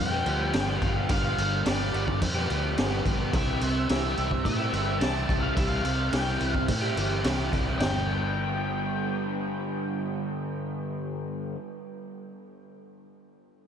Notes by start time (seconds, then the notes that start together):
Already playing: G2
0.00 F2 G5
0.12 F3 G3 B3 G4
0.25 D2 F3 G3 B3 G4, crash
0.53 G1 G2 D3 F3 G3 B3, snare, crash
0.58 G4
0.78 G1 F3 F5, kick, crash
0.83 G3 B3 G4
0.96 F3 G3 B3 G4
1.09 G1 G2 D3 F3 G3 B3 G4 F5, kick, crash
1.38 G1, muted overdriven electric guitar stroke, crash
1.65 G1 G2 D3 F3 G3 B3 G4 D5, snare, crash
1.93 G1 F3 G3 B3 G4, crash
2.07 muted overdriven electric guitar stroke, kick
2.22 F2, kick, crash
2.35 F3 G3 B3 G4
2.48 D2 F3 G3 B3 G4, crash
2.77 G1 G2 D3 F3 G3 B3 G4, snare, crash
3.04 G1 F3 G3 B3 G4, kick, crash
3.19 F3 G3 B3 G4
3.33 C2 C3 E3 G3 E4 G4 E5, kick, crash
3.61 C2, muted overdriven electric guitar stroke, crash
3.89 C2 C3 E3 G3 E4 G4, snare, crash
4.15 C2 E3 G3 E4 G4, crash
4.31 muted overdriven electric guitar stroke, kick
4.45 A2 E5, kick, crash
4.57 E4 G4
4.61 G3
4.72 G1 E3 G3 E4 G4, crash
4.99 C2 C3 E3 G3 A5, snare, crash
5.03 E4 G4
5.27 C2 E3 G3 E4 G4, kick, crash
5.41 G3 E4 G4 F5
5.56 C2 C3 E3 G3 E4 G4 E5, kick, crash
5.67 F5
5.85 C2, muted overdriven electric guitar stroke, crash
6.11 C2 C3 E3 G3 E4 G5, snare, crash
6.16 G4
6.39 C2 E3 G3 E4 G4, crash
6.53 F5, muted overdriven electric guitar stroke, kick
6.68 A2, kick, crash
6.82 G3 E4 G4
6.96 G1 E3 G3 E4 G4, crash
7.23 C2 C3 E3 G3 E4 G4, snare, crash
7.52 C2 E3 G3 E4 G4, kick, crash
7.66 G3 E4 G4
7.79 G1 G2 D3 G5, snare, floor tom, crash
7.83 G3 B3 D4 G4